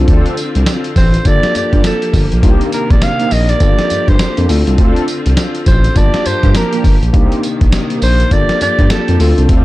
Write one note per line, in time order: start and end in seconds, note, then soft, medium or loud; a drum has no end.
0.00 1.24 D3 medium
0.00 1.22 C4 medium
0.00 1.24 C4 medium
0.00 1.23 D4 medium
0.00 1.23 F4 medium
0.00 1.24 F4 medium
0.00 1.23 A4 medium
0.07 0.21 D2 loud
0.07 0.35 C4 loud
0.07 0.35 D4 medium
0.07 0.35 F4 medium
0.07 0.35 A4 loud
0.07 kick loud
0.07 closed hi-hat medium
0.26 closed hi-hat medium
0.37 closed hi-hat medium
0.37 tambourine medium
0.55 0.64 C2 loud
0.55 closed hi-hat medium
0.67 snare loud
0.67 closed hi-hat medium
0.67 tambourine loud
0.84 closed hi-hat medium
0.96 1.18 A1 loud
0.96 1.28 C5 loud
0.96 kick medium
0.96 open hi-hat medium
0.96 tambourine medium
1.14 closed hi-hat medium
1.25 1.39 G1 loud
1.25 2.42 F3 medium
1.25 2.40 A#3 medium
1.25 4.46 A#3 medium
1.25 2.41 D4 medium
1.25 2.41 F4 medium
1.25 2.42 G4 medium
1.25 2.42 A4 medium
1.25 1.56 D5 loud
1.25 kick medium
1.25 closed hi-hat medium
1.25 tambourine medium
1.43 snare medium
1.43 closed hi-hat medium
1.55 1.62 G2 medium
1.55 1.83 D5 loud
1.55 closed hi-hat medium
1.55 tambourine medium
1.72 1.81 G2 loud
1.72 1.84 A#3 medium
1.72 1.84 D4 medium
1.72 1.84 F4 medium
1.72 1.84 G4 medium
1.72 kick medium
1.72 closed hi-hat soft
1.84 2.30 A4 medium
1.84 snare loud
1.84 closed hi-hat medium
1.84 tambourine loud
2.02 closed hi-hat medium
2.13 2.27 G1 loud
2.13 kick medium
2.13 open hi-hat medium
2.13 tambourine medium
2.32 2.41 A#1 medium
2.32 closed hi-hat medium
2.42 2.56 C2 loud
2.42 3.60 C3 medium
2.42 3.60 D#3 medium
2.42 3.58 A#3 medium
2.42 2.70 A#3 medium
2.42 2.70 C4 medium
2.42 3.58 D4 medium
2.42 2.71 D#4 medium
2.42 3.59 D#4 medium
2.42 2.52 F4 medium
2.42 2.71 G4 loud
2.42 kick loud
2.42 closed hi-hat medium
2.51 3.62 G4 medium
2.61 closed hi-hat medium
2.72 2.93 A#4 medium
2.72 closed hi-hat medium
2.72 tambourine medium
2.90 2.99 A#1 loud
2.90 3.05 D5 loud
2.90 kick loud
2.90 closed hi-hat medium
3.02 3.34 F5 loud
3.02 snare loud
3.02 closed hi-hat medium
3.02 tambourine medium
3.19 3.31 A#3 medium
3.19 3.31 C4 medium
3.19 3.31 D#4 medium
3.19 3.31 G4 medium
3.19 closed hi-hat medium
3.31 3.53 A#1 medium
3.31 3.51 D#5 loud
3.31 open hi-hat medium
3.31 tambourine medium
3.49 4.10 D5 loud
3.49 closed hi-hat medium
3.60 3.74 G1 loud
3.60 4.48 F3 medium
3.60 4.49 A#3 medium
3.60 4.48 D4 medium
3.60 4.48 F4 medium
3.60 4.48 G4 medium
3.60 4.49 A4 medium
3.60 kick medium
3.60 closed hi-hat medium
3.60 tambourine medium
3.78 snare medium
3.78 closed hi-hat medium
3.90 3.98 G2 medium
3.90 closed hi-hat medium
3.90 tambourine medium
4.08 4.17 G2 loud
4.08 4.49 C5 medium
4.08 kick medium
4.08 closed hi-hat soft
4.19 snare loud
4.19 closed hi-hat medium
4.19 tambourine loud
4.37 4.46 F2 medium
4.37 4.49 A#3 medium
4.37 4.49 D4 medium
4.37 4.49 F4 medium
4.37 4.49 G4 medium
4.37 closed hi-hat medium
4.48 4.62 D2 loud
4.48 5.94 D3 medium
4.48 5.93 C4 medium
4.48 5.94 C4 medium
4.48 5.93 D4 medium
4.48 5.94 F4 medium
4.48 5.93 F4 medium
4.48 5.94 A4 medium
4.48 open hi-hat medium
4.48 tambourine medium
4.66 4.76 C2 medium
4.66 4.77 C4 medium
4.66 4.77 D4 medium
4.66 4.77 F4 medium
4.66 4.77 A4 medium
4.66 closed hi-hat medium
4.78 4.92 D2 loud
4.78 5.06 C4 medium
4.78 5.06 D4 medium
4.78 5.06 F4 medium
4.78 5.06 A4 loud
4.78 kick loud
4.78 closed hi-hat medium
4.96 closed hi-hat medium
5.08 closed hi-hat medium
5.08 tambourine medium
5.26 5.34 C2 medium
5.26 closed hi-hat medium
5.37 snare loud
5.37 closed hi-hat medium
5.37 tambourine medium
5.55 closed hi-hat medium
5.66 5.88 A1 loud
5.66 5.98 C5 loud
5.66 kick medium
5.66 closed hi-hat medium
5.66 tambourine medium
5.84 closed hi-hat medium
5.95 6.09 G1 medium
5.95 7.12 F3 medium
5.95 7.11 A#3 medium
5.95 7.12 A#3 medium
5.95 7.11 D4 medium
5.95 7.12 F4 medium
5.95 7.13 G4 medium
5.95 6.28 D5 loud
5.95 7.12 A5 medium
5.95 kick medium
5.95 closed hi-hat medium
5.95 tambourine medium
6.14 snare medium
6.14 closed hi-hat medium
6.25 6.33 G2 medium
6.25 6.55 C5 loud
6.25 closed hi-hat medium
6.25 tambourine medium
6.43 6.52 G2 loud
6.43 6.55 A#3 medium
6.43 6.55 D4 medium
6.43 6.55 F4 medium
6.43 6.55 G4 medium
6.43 kick medium
6.43 closed hi-hat medium
6.55 7.00 A#4 medium
6.55 snare loud
6.55 closed hi-hat medium
6.55 tambourine loud
6.72 6.84 A#3 medium
6.72 6.84 D4 medium
6.72 6.84 F4 medium
6.72 6.84 G4 medium
6.72 closed hi-hat medium
6.84 6.97 G1 loud
6.84 kick medium
6.84 open hi-hat medium
6.84 tambourine medium
7.02 7.11 A#1 medium
7.02 closed hi-hat medium
7.13 7.27 C2 loud
7.13 8.30 C3 medium
7.13 8.30 D#3 medium
7.13 8.28 A#3 medium
7.13 7.41 A#3 medium
7.13 9.17 A#3 medium
7.13 7.41 C4 medium
7.13 8.29 D4 medium
7.13 7.41 D#4 medium
7.13 8.29 D#4 medium
7.13 7.41 G4 loud
7.13 8.30 G4 medium
7.13 kick loud
7.13 closed hi-hat medium
7.32 closed hi-hat medium
7.43 closed hi-hat medium
7.43 tambourine medium
7.61 7.70 A#1 medium
7.61 kick loud
7.61 closed hi-hat medium
7.72 snare loud
7.72 closed hi-hat medium
7.72 tambourine medium
7.90 8.02 A#3 medium
7.90 8.02 C4 medium
7.90 8.02 D#4 medium
7.90 8.02 G4 medium
7.90 closed hi-hat medium
8.02 8.24 A#1 loud
8.02 8.34 C5 loud
8.02 open hi-hat medium
8.02 tambourine medium
8.20 closed hi-hat medium
8.30 8.45 G1 loud
8.30 9.18 F3 medium
8.30 9.20 A#3 medium
8.30 9.19 D4 medium
8.30 9.19 F4 medium
8.30 9.18 G4 medium
8.30 9.20 A4 medium
8.30 8.61 D5 loud
8.30 kick loud
8.30 closed hi-hat medium
8.30 tambourine medium
8.49 snare medium
8.49 closed hi-hat medium
8.61 8.68 G2 medium
8.61 8.89 D5 loud
8.61 closed hi-hat medium
8.61 tambourine medium
8.79 8.87 G2 loud
8.79 kick medium
8.79 closed hi-hat soft
8.90 9.35 A4 medium
8.90 snare loud
8.90 closed hi-hat medium
8.90 tambourine loud
9.08 9.17 F2 medium
9.08 9.19 A#3 medium
9.08 9.20 D4 medium
9.08 9.20 F4 medium
9.08 9.20 G4 medium
9.08 closed hi-hat medium
9.19 9.33 D2 loud
9.19 9.65 D3 medium
9.19 9.65 C4 medium
9.19 9.65 D4 medium
9.19 9.65 F4 medium
9.19 9.65 A4 medium
9.19 open hi-hat medium
9.19 tambourine medium
9.37 9.46 C2 medium
9.37 9.48 C4 medium
9.37 9.48 D4 medium
9.37 9.48 F4 medium
9.37 9.48 A4 medium
9.37 closed hi-hat medium
9.49 9.62 D2 loud
9.49 9.65 C4 medium
9.49 9.65 D4 medium
9.49 9.65 F4 medium
9.49 9.65 A4 loud
9.49 kick loud
9.49 closed hi-hat medium